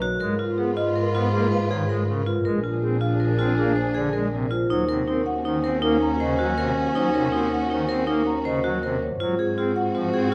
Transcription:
0.02 F#4 C#5
0.20 G#2 G#3 F4 A#4 B4
0.39 F4
0.57 B3 G#4
0.77 F4 D#5
0.96 A#4
1.14 B3 F4
1.32 A#3 G#4
1.51 B4 F5
1.70 D#3 G#4 C#5
1.89 G#3 A#4
2.08 C#3 A#4
2.26 F4 B4
2.45 A#1 G#3 D4 G#4 A#4
2.64 F4
2.82 C4 G#4
3.01 F4 F5
3.20 A#4
3.39 C4 F4
3.58 A#3 G#4
3.76 C5 G#5
3.94 D3 G#4 D5
4.13 G#3 A#4
4.33 C3 A#4
4.51 F4 C5
4.70 D#2 F#3 C#4 D#4 F#4 C5
4.88 C3 A#4
5.08 C4 D#4 A#4
5.26 F#5
5.45 D#3 D#4 C5
5.64 C4 A#4
5.82 A#3 D#4 A#4
6.02 A#5
6.20 C#3 C5 D#5
6.39 F#3 F#4
6.58 C3 A#4 C5
6.77 C#5
6.95 F#3 D#4 C5
7.14 C3 A#4
7.32 C4 D#4 A#4
7.52 F#5
7.70 D#3 D#4 C5
7.89 C4 A#4
8.07 A#3 D#4 A#4
8.27 A#5
8.45 C#3 C5 D#5
8.64 F#3 F#4
8.83 C3 A#4 C5
9.03 C#5
9.20 G#2 F#3 C4 F4 F#4 C5
9.39 G#4
9.58 C4 F4 G#4
9.76 F#5
9.95 F3 F4 C5
10.14 C4 G#4

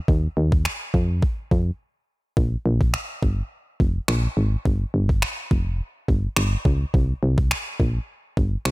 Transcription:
0.08 D#2, kick
0.37 D#2
0.52 kick
0.65 finger snap
0.94 F2, kick
1.23 kick
1.51 F2, kick
2.37 A#1, kick
2.66 A#1
2.81 kick
2.94 finger snap
3.23 G1, kick
3.80 F1, kick
4.08 A#1, finger snap
4.37 G#1
4.65 G1, kick
4.94 G1
5.09 kick
5.22 finger snap
5.51 F1, kick
6.08 G1, kick
6.36 G1, finger snap
6.65 C#2, kick
6.94 C2, kick
7.23 C2
7.38 kick
7.51 finger snap
7.80 A#1, kick
8.37 G1, kick
8.65 C2, finger snap

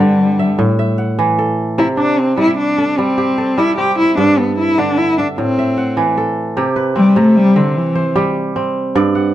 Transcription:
Already playing: G2 G3 C4 A4
0.00 D3
0.39 E5
0.59 A2
0.79 E5
0.98 F#5
1.19 E3
1.39 A4
1.78 C3 E4
1.97 D4
2.19 C4
2.37 G3 E4
2.58 D4
2.78 A4
2.98 G3 C4
3.18 G4
3.38 A4
3.58 G3 E4
3.78 C4 G4
3.99 E4
4.17 G2 D4
4.38 B3 A4
4.59 E4
4.78 D3 D4
4.97 E4
5.18 D4 E5
5.38 A2 C4
5.59 E5
5.77 F#5
5.97 E3
6.17 A4
6.57 C3 G4
6.76 B4
6.96 G3 C4
7.16 C3 A3
7.36 G3
7.56 D3 C4
7.76 E3
7.95 C5
8.16 G3 G4
8.56 C4
8.95 G2 D5
9.15 F#5

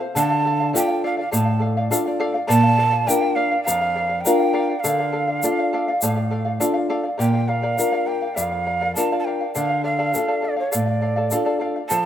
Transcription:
0.00 C5 F5
0.15 D3 A4 D5 F5 A5, shaker
0.30 D5 F5
0.45 A4 D5 F5
0.60 D5 F5
0.73 D4 F4 A4 D5 F5 G5, shaker
0.88 D5 F5
1.04 A4 D5 F5
1.17 D5 F5
1.31 A2 A4 D5 F5 A5, shaker
1.45 D5 F5
1.59 A4 D5 F5
1.77 D5 F5
1.90 D4 F4 A4 D5 F5, shaker
2.06 D5 F5
2.20 A4 D5 F5
2.34 D5 F5
2.47 A#2 A#4 D5 F5 A5, shaker
2.63 D5 F5
2.78 A#4 D5 F5
2.92 D5 F5
3.06 D4 F4 A#4 D5 F5 G5, shaker
3.21 D5 F5
3.35 A#4 D5 F5
3.51 D5 F5
3.63 A#4 F5
3.67 F2 D5, shaker
3.81 D5 F5
3.95 A#4 D5 F5
4.09 D5 F5
4.21 G5
4.25 D4 F4 A#4 D5 F5, shaker
4.39 D5 F5
4.53 A#4 D5 F5
4.70 D5 F5
4.80 A4 F5
4.84 D3 D5 F5, shaker
4.98 D5 F5
5.12 A4 D5 F5
5.28 D5 F5
5.43 D4 F4 A4 D5 F5, shaker
5.59 D5 F5
5.73 A4 D5 F5
5.88 D5 F5
6.02 A2 A4 D5 F5, shaker
6.16 D5 F5
6.31 A4 D5 F5
6.45 D5 F5
6.60 D4 F4 A4 D5 F5, shaker
6.74 D5 F5
6.89 A4 D5 F5
7.03 D5 F5
7.18 A#2 A#4 D5 F5 G5, shaker
7.34 D5 F5
7.48 A#4 D5 F5
7.62 A#4 D5 F5
7.78 D4 F4 A#4 D5 F5, shaker
7.92 A#4 D5 F5
8.07 A#4 D5 F5 G5
8.22 D5 F5
8.35 F2 A#4 D5 F5, shaker
8.51 D5 F5
8.66 A#4 D5 F5
8.81 A#4 D5 F5
8.95 D4 F4 A#4 D5 F5 A5, shaker
9.12 A#4 D5 F5
9.20 A5
9.25 A#4 D5 F5 G5
9.41 D5 F5
9.55 D3 A4 D5 F5, shaker
9.69 D5 F5
9.83 A4 D5 F5
9.99 A4 D5 F5
10.14 D4 F4 A4 D5 F5, shaker
10.28 A4 D5 F5
10.42 A4 D5 F5
10.56 C#5 D5 F5
10.72 A2 A4 D5 F5, shaker
10.86 D5 F5
11.01 A4 D5 F5
11.16 A4 D5 F5
11.31 D4 F4 A4 D5 F5, shaker
11.45 A4 D5 F5
11.60 A4 D5 F5
11.76 D5 F5
11.89 F3 A4 C5 F5 A5, shaker

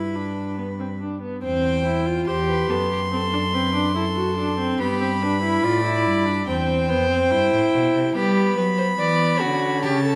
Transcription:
Already playing: G2 E4 B4 B5
0.15 D4
0.58 B3
0.79 C4
1.01 D4
1.22 B3
1.43 E2 C4 C5 G5
1.85 E4
2.06 F4
2.27 E2 G4 C5 C6
2.49 B4
2.70 F#2 B3 A4
2.91 G4
3.12 C4 A4
3.33 D4
3.53 C4 B4
3.74 D4
3.95 E4 A4
4.16 F#4
4.37 D4
4.59 C4
4.80 G2 B3 G4 B5
5.01 C4
5.22 D4 B4
5.42 E4
5.64 A2 F4 D5
5.84 E4
6.06 G2
6.26 D4
6.47 E2 C4 C5 G5
6.89 F2 B3
7.10 C4
7.31 G2 E4
7.52 A2
7.73 B2
7.94 C3
8.15 G3 B3 G4 B5
8.57 F#3 B4
8.78 C5
8.98 E3 B3 D5
9.40 D3 C#4 F#4
9.82 C#3 G4 A5
10.03 A4

